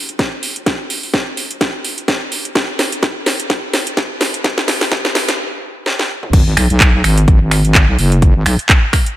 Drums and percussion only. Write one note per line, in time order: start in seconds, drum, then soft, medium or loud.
0.09 closed hi-hat medium
0.19 kick loud
0.19 snare medium
0.19 closed hi-hat soft
0.43 open hi-hat loud
0.56 closed hi-hat medium
0.66 kick loud
0.66 snare medium
0.66 closed hi-hat medium
0.90 open hi-hat loud
1.03 open hi-hat medium
1.14 kick loud
1.14 snare medium
1.14 closed hi-hat medium
1.37 open hi-hat loud
1.51 closed hi-hat medium
1.61 kick loud
1.61 snare medium
1.61 closed hi-hat soft
1.85 open hi-hat loud
1.98 closed hi-hat medium
2.08 kick loud
2.08 snare medium
2.08 closed hi-hat medium
2.32 open hi-hat loud
2.45 closed hi-hat medium
2.55 kick loud
2.55 snare medium
2.55 closed hi-hat medium
2.79 snare medium
2.79 open hi-hat loud
2.92 closed hi-hat medium
3.03 kick loud
3.03 snare medium
3.03 closed hi-hat medium
3.26 snare medium
3.26 open hi-hat loud
3.40 closed hi-hat medium
3.50 kick loud
3.50 snare medium
3.50 closed hi-hat medium
3.74 snare medium
3.74 open hi-hat loud
3.87 closed hi-hat medium
3.97 kick loud
3.97 snare medium
3.97 closed hi-hat medium
4.21 snare medium
4.21 open hi-hat loud
4.34 closed hi-hat medium
4.44 kick loud
4.44 snare loud
4.44 closed hi-hat medium
4.58 snare medium
4.68 snare loud
4.68 open hi-hat loud
4.81 snare medium
4.81 open hi-hat medium
4.92 kick loud
4.92 snare loud
4.92 closed hi-hat medium
5.05 snare medium
5.15 snare loud
5.15 open hi-hat loud
5.29 snare medium
5.29 closed hi-hat medium
5.86 snare medium
5.99 snare medium
6.23 mid tom medium
6.33 kick loud
6.33 closed hi-hat medium
6.33 crash loud
6.57 finger snap medium
6.57 open hi-hat loud
6.70 closed hi-hat medium
6.80 kick loud
6.80 clap loud
6.80 closed hi-hat medium
7.04 finger snap medium
7.04 open hi-hat loud
7.17 closed hi-hat medium
7.28 kick loud
7.28 closed hi-hat medium
7.51 finger snap medium
7.51 open hi-hat loud
7.65 closed hi-hat medium
7.75 kick loud
7.75 clap loud
7.75 closed hi-hat medium
7.99 open hi-hat loud
8.12 closed hi-hat medium
8.22 kick loud
8.22 closed hi-hat medium
8.46 finger snap medium
8.46 open hi-hat loud
8.59 closed hi-hat medium
8.69 kick loud
8.69 clap loud
8.69 closed hi-hat medium
8.93 finger snap medium
8.93 kick medium
8.93 open hi-hat loud
9.06 closed hi-hat medium